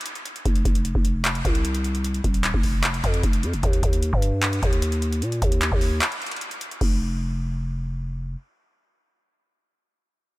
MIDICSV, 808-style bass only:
0, 0, Header, 1, 2, 480
1, 0, Start_track
1, 0, Tempo, 397351
1, 548, Time_signature, 4, 2, 24, 8
1, 12545, End_track
2, 0, Start_track
2, 0, Title_t, "808-style bass"
2, 0, Program_c, 0, 38
2, 550, Note_on_c, 0, 29, 116
2, 780, Note_off_c, 0, 29, 0
2, 789, Note_on_c, 0, 29, 106
2, 1134, Note_off_c, 0, 29, 0
2, 1149, Note_on_c, 0, 29, 102
2, 1725, Note_off_c, 0, 29, 0
2, 1750, Note_on_c, 0, 36, 106
2, 2671, Note_off_c, 0, 36, 0
2, 2709, Note_on_c, 0, 27, 110
2, 3054, Note_off_c, 0, 27, 0
2, 3069, Note_on_c, 0, 29, 101
2, 3645, Note_off_c, 0, 29, 0
2, 3670, Note_on_c, 0, 41, 107
2, 3900, Note_off_c, 0, 41, 0
2, 3908, Note_on_c, 0, 29, 107
2, 4149, Note_on_c, 0, 41, 101
2, 4168, Note_off_c, 0, 29, 0
2, 4268, Note_on_c, 0, 29, 99
2, 4286, Note_off_c, 0, 41, 0
2, 4383, Note_off_c, 0, 29, 0
2, 4389, Note_on_c, 0, 39, 116
2, 4619, Note_off_c, 0, 39, 0
2, 4627, Note_on_c, 0, 39, 108
2, 4973, Note_off_c, 0, 39, 0
2, 4988, Note_on_c, 0, 43, 104
2, 5564, Note_off_c, 0, 43, 0
2, 5589, Note_on_c, 0, 39, 109
2, 6308, Note_on_c, 0, 46, 101
2, 6327, Note_off_c, 0, 39, 0
2, 6537, Note_off_c, 0, 46, 0
2, 6547, Note_on_c, 0, 39, 106
2, 6893, Note_off_c, 0, 39, 0
2, 6907, Note_on_c, 0, 39, 104
2, 7254, Note_off_c, 0, 39, 0
2, 8229, Note_on_c, 0, 29, 113
2, 10100, Note_off_c, 0, 29, 0
2, 12545, End_track
0, 0, End_of_file